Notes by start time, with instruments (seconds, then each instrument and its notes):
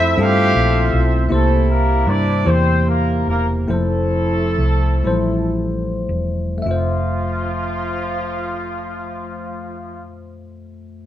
Already playing: fingered electric bass F2, tine electric piano A3 C4 E4 F4 C5, horn section E4 A4 C5 E5
0.16 fingered electric bass G2, tine electric piano A3 C4 F4 A4, horn section G4 A4
0.20 horn section C4 F4 C5 E5 F5
0.55 fingered electric bass A#1
0.93 fingered electric bass B1
1.29 fingered electric bass C2, tine electric piano C3 A#3 E4 G4 C5
1.33 horn section A3 E4 A4
1.71 horn section A#3 A#4
2.07 fingered electric bass G2, horn section D4 D5
2.44 fingered electric bass E2, tine electric piano A#3 E4 G4 C5, horn section C4 C5
2.88 horn section A#3 A#4
3.27 fingered electric bass E1, horn section A#3 A#4
3.68 fingered electric bass F1, tine electric piano F3 A3 E4 C5
3.72 horn section A3 C4 E4 A4
4.58 fingered electric bass C2
5.04 fingered electric bass A1, tine electric piano F3 G3 E4 C5
5.10 tine electric piano A3
6.09 fingered electric bass E1
6.58 tine electric piano A3
6.62 fingered electric bass F1, tine electric piano F2 E5
6.67 horn section F3 F4, tine electric piano F4
6.71 tine electric piano C5